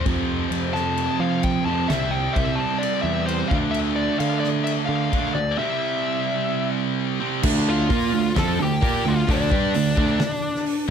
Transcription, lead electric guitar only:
0.74 1.22 A5 loud
1.20 1.45 F5 medium
1.44 1.65 G5 medium
1.65 1.90 A5 medium
1.88 2.13 E5 loud
2.11 2.36 G5 medium
2.33 2.59 E5 medium
2.56 2.82 A5 medium
2.78 3.02 D5 medium
3.02 3.25 E5 loud
3.25 3.49 C5 medium
3.48 3.55 F5 medium
3.71 3.78 E5 medium
3.96 4.19 D5 medium
4.19 4.39 F5 medium
4.40 4.47 D5 medium
4.64 4.71 E5 medium
4.86 5.34 F5 medium
5.35 5.58 D5 medium
5.58 6.70 E5 medium
7.69 8.33 F4 medium
7.69 8.33 F5 medium
8.38 8.58 A4 medium
8.38 8.59 A5 loud
8.63 9.03 G4 medium
8.63 9.09 G5 loud
9.08 9.28 F4 medium
9.08 9.29 F5 medium
9.30 10.86 D4 medium
9.30 10.87 D5 medium

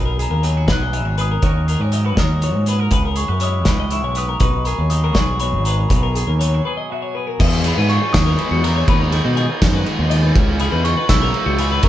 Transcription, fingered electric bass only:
0.00 0.25 B1 loud
0.30 0.70 D#2 medium
0.68 1.03 B1 medium
1.03 1.36 G#1 medium
1.43 1.75 D#2 loud
1.79 2.17 G#2 medium
2.17 2.54 D#2 medium
2.54 2.86 G#2 medium
2.91 3.23 C#2 loud
3.29 3.66 F#2 medium
3.66 4.03 C#2 medium
4.03 4.36 B1 medium
4.40 4.73 B1 loud
4.78 5.15 D#2 medium
5.15 5.54 B1 medium
5.53 5.85 G#1 medium
5.90 6.22 B1 medium
6.27 6.59 D#2 medium
7.39 7.71 E2 loud
7.77 7.98 G#2 medium
8.13 8.35 D#2 loud
8.51 8.82 E2 loud
8.88 9.19 D#2 loud
9.25 9.46 B2 medium
9.62 9.83 F#2 medium
9.99 10.30 D#2 loud
10.36 10.67 C#2 loud
10.72 10.94 E2 medium
11.09 11.30 B1 loud
11.46 11.78 C#2 loud
11.83 11.89 F#2 loud

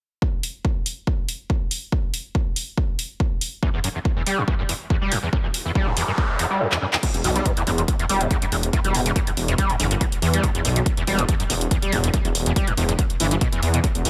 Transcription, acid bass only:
3.63 3.69 E2 loud
3.74 3.79 E2 loud
3.84 3.88 F#2 loud
3.95 3.98 E2 medium
4.16 4.22 E2 loud
4.26 4.39 G3 medium
4.38 4.43 E2 loud
4.48 4.54 E2 loud
4.59 4.62 F#2 loud
4.69 4.73 E2 medium
4.90 4.96 E2 loud
5.02 5.13 G3 medium
5.12 5.18 E2 loud
5.23 5.28 E2 loud
5.33 5.37 F#2 loud
5.44 5.47 E2 medium
5.65 5.71 E2 loud
5.75 5.88 G3 medium
5.87 5.92 E2 loud
5.97 6.03 E2 loud
6.08 6.11 F#2 loud
6.18 6.22 E2 medium
6.39 6.45 E2 loud
6.50 6.62 G3 medium
6.60 6.67 E2 loud
6.72 6.77 E2 loud
6.82 6.85 F#2 loud
6.93 6.96 E2 medium
7.03 7.07 E2 medium
7.24 7.30 E2 loud
7.36 7.47 G3 medium
7.46 7.52 E2 loud
7.57 7.62 E2 loud
7.67 7.71 F#2 loud
7.78 7.81 E2 medium
7.99 8.05 E2 loud
8.09 8.22 G3 medium
8.21 8.26 E2 loud
8.31 8.37 E2 loud
8.42 8.45 F#2 loud
8.52 8.56 E2 medium
8.73 8.79 E2 loud
8.85 8.96 G3 medium
8.95 9.01 E2 loud
9.06 9.11 E2 loud
9.16 9.20 F#2 loud
9.27 9.30 E2 medium
9.48 9.54 E2 loud
9.59 9.71 G3 medium
9.70 9.75 E2 loud
9.80 9.86 E2 loud
9.91 9.94 F#2 loud
10.01 10.05 E2 medium
10.22 10.28 E2 loud
10.34 10.45 G3 medium
10.43 10.50 E2 loud
10.55 10.60 E2 loud
10.65 10.68 F#2 loud
10.76 10.79 E2 medium
10.97 11.03 E2 loud
11.07 11.20 G3 medium
11.18 11.24 E2 loud
11.28 11.35 E2 loud
11.40 11.43 F#2 loud
11.50 11.53 E2 medium
11.71 11.77 E2 loud
11.82 11.94 G3 medium
11.92 11.99 E2 loud
12.04 12.09 E2 loud
12.14 12.17 F#2 loud
12.25 12.28 E2 medium
12.46 12.52 E2 loud
12.56 12.69 G3 medium
12.67 12.73 E2 loud
12.78 12.84 E2 loud
12.89 12.92 F#2 loud
12.99 13.02 E2 medium
13.20 13.26 E3 loud
13.31 13.35 E3 loud
13.41 13.47 B2 medium
13.52 13.61 E2 loud
13.62 13.69 E2 medium
13.74 13.79 B2 medium
13.84 13.87 E2 medium
14.05 14.10 E2 loud

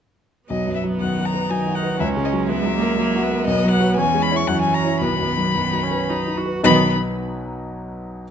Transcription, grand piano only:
0.50 1.96 B1 soft
0.67 0.94 F#2 soft
0.83 1.11 F#3 soft
1.01 1.28 F#2 soft
1.18 1.44 F#3 soft
1.34 1.61 B4 soft
1.50 1.77 F#3 soft
1.68 1.94 F#4 soft
1.83 2.00 B4 soft
2.00 3.44 C#2 soft
2.17 2.43 C#3 soft
2.33 2.59 F#3 soft
2.49 2.76 C#3 soft
2.66 2.92 F#3 soft
2.82 3.08 A#4 soft
2.99 3.25 F#3 soft
3.15 3.41 F#4 medium
3.31 3.48 A#4 medium
3.47 3.96 B1 medium
3.64 3.91 F#3 medium
3.80 3.95 F#4 soft
3.80 3.96 B4 soft
3.97 4.47 E2 medium
4.14 4.42 G#3 soft
4.31 4.47 E4 soft
4.31 4.47 C#5 medium
4.48 5.00 F#2 medium
4.66 4.94 F#3 soft
4.84 5.00 E4 soft
4.84 5.00 C#5 soft
5.01 6.60 B1 soft
5.19 5.48 F#2 soft
5.37 5.66 F#3 soft
5.54 5.84 F#2 soft
5.72 6.02 F#3 soft
5.91 6.20 B4 soft
6.09 6.39 F#3 soft
6.27 6.57 D#4 soft
6.46 6.62 B4 soft
6.64 6.93 B1 medium
6.64 6.93 B2 medium
6.64 6.93 F#3 medium
6.64 6.93 D#4 medium
6.64 6.93 B4 medium
6.64 6.93 D#5 medium

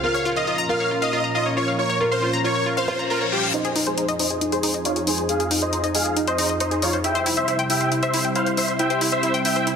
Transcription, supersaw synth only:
0.04 0.24 F5 loud
0.36 0.57 D#5 loud
0.69 0.90 F5 medium
1.02 1.22 D#5 loud
1.35 1.48 D#5 medium
1.57 1.70 C#5 medium
1.79 1.99 C#5 loud
2.12 2.32 C5 loud
2.44 2.65 C#5 medium
2.77 2.98 C5 medium
3.10 3.24 A#4 medium
3.32 3.46 G4 medium
3.54 3.74 C5 medium
3.54 3.74 D#5 loud
3.87 4.07 G#4 medium
3.87 4.07 C5 medium
4.20 4.40 C5 medium
4.20 4.40 D#5 medium
4.52 4.73 G#4 medium
4.52 4.73 C5 loud
4.85 4.99 F4 medium
4.85 4.99 C#5 medium
5.07 5.21 G#4 medium
5.07 5.21 C5 medium
5.29 5.49 G#4 medium
5.29 5.49 F5 loud
5.62 5.82 C5 medium
5.62 5.82 D#5 medium
5.95 6.15 G#4 medium
5.95 6.15 F5 medium
6.28 6.48 C5 medium
6.28 6.48 D#5 medium
6.60 6.74 C5 medium
6.60 6.74 D#5 medium
6.82 6.96 F4 medium
6.82 6.96 C#5 medium
7.04 7.25 E5 medium
7.04 7.25 G5 loud
7.37 7.57 C5 medium
7.37 7.57 E5 medium
7.70 7.90 E5 medium
7.70 7.90 G5 medium
8.03 8.23 C5 medium
8.03 8.23 E5 loud
8.35 8.49 C5 medium
8.35 8.49 F5 medium
8.57 8.71 C5 medium
8.57 8.71 E5 medium
8.79 9.00 E5 medium
8.79 9.00 G5 loud
9.12 9.32 C5 medium
9.12 9.32 E5 medium
9.45 9.65 E5 medium
9.45 9.65 G5 loud

